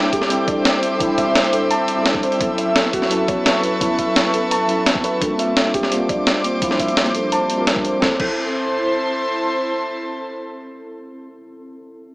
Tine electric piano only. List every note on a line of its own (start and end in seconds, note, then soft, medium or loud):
0.00 0.27 G3 medium
0.00 0.28 C4 medium
0.00 0.28 D4 medium
0.00 0.29 E4 medium
0.00 0.29 A4 loud
0.28 0.97 G3 medium
0.28 0.98 C4 medium
0.28 0.98 D4 medium
0.28 0.99 E4 medium
0.28 0.99 A4 medium
0.99 1.85 G3 medium
0.99 1.86 C4 medium
0.99 1.86 D4 medium
0.99 1.86 E4 medium
0.99 1.87 A4 medium
1.95 2.38 G3 medium
1.95 2.38 C4 medium
1.95 2.39 D4 medium
1.95 2.39 E4 medium
1.95 2.40 A4 medium
2.39 3.08 F#3 medium
2.39 3.08 B3 medium
2.39 3.09 C#4 medium
2.39 3.09 E4 medium
2.39 3.10 A4 medium
3.09 3.78 F#3 medium
3.09 3.79 B3 medium
3.09 3.79 C#4 medium
3.09 3.79 E4 medium
3.09 3.80 A4 medium
3.79 4.66 F#3 medium
3.79 4.66 B3 medium
3.79 4.67 C#4 medium
3.79 4.67 E4 medium
3.79 4.68 A4 medium
4.67 5.19 F#3 medium
4.67 5.19 B3 medium
4.67 5.19 C#4 medium
4.67 5.20 E4 medium
4.67 5.20 A4 medium
5.20 5.89 G3 medium
5.20 5.90 A#3 medium
5.20 5.89 C4 medium
5.20 5.90 D4 medium
5.20 5.90 F4 medium
5.90 6.59 G3 medium
5.90 6.61 A#3 medium
5.90 6.59 C4 medium
5.90 6.60 D4 medium
5.90 6.60 F4 medium
6.60 7.48 F3 medium
6.60 7.47 G3 medium
6.60 7.48 A#3 medium
6.60 7.47 C4 medium
6.60 7.48 D4 medium
7.57 7.99 G3 medium
7.57 7.99 C4 medium
7.57 8.00 D4 medium
7.57 8.01 F4 medium
7.57 8.01 A#4 medium
8.00 8.11 C4 medium
8.00 8.12 E4 medium
8.05 8.13 A4 medium
8.17 11.36 C4 medium
8.17 11.39 E4 medium
8.22 11.41 A4 medium